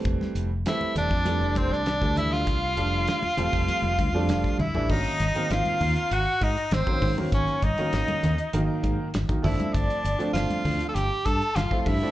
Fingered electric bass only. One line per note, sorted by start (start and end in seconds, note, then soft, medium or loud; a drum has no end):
0.05 0.19 F1 medium
0.35 0.63 F1 medium
0.96 1.10 E1 medium
1.11 1.42 F2 medium
1.41 1.69 F1 medium
1.71 1.99 C2 medium
2.01 2.43 D2 medium
2.47 2.75 C2 medium
2.77 3.05 F1 medium
3.23 muted fingered electric bass stroke soft
3.37 3.52 E1 medium
3.53 3.67 F1 medium
3.82 3.97 F1 medium
3.98 4.12 D2 medium
4.13 4.29 F2 medium
4.28 4.42 F1 medium
4.59 4.73 C2 medium
4.74 4.88 A1 medium
4.89 5.04 G#1 medium
5.20 5.34 G#1 medium
5.51 5.64 G#1 medium
5.81 5.95 D#2 medium
6.11 6.25 G#1 medium
6.41 6.55 G#2 medium
6.71 6.85 G#1 medium
7.02 7.16 G#2 loud
7.17 muted fingered electric bass stroke soft
7.32 7.46 G#1 medium
7.62 7.76 G#1 medium
7.78 muted fingered electric bass stroke soft
7.93 8.07 G#1 loud
8.23 8.37 D#2 medium
8.54 8.68 G#1 medium
8.83 8.97 G#2 medium
9.15 9.29 G#1 medium
9.29 muted fingered electric bass stroke soft
9.44 9.58 G1 medium
9.74 9.88 G1 medium
10.05 10.19 G1 medium
10.20 muted fingered electric bass stroke soft
10.34 10.49 G1 medium
10.50 muted fingered electric bass stroke soft
10.65 10.79 D2 medium
10.95 11.09 G1 medium
11.26 11.40 G2 medium
11.56 11.70 G1 medium
11.86 12.00 G2 loud
12.00 muted fingered electric bass stroke soft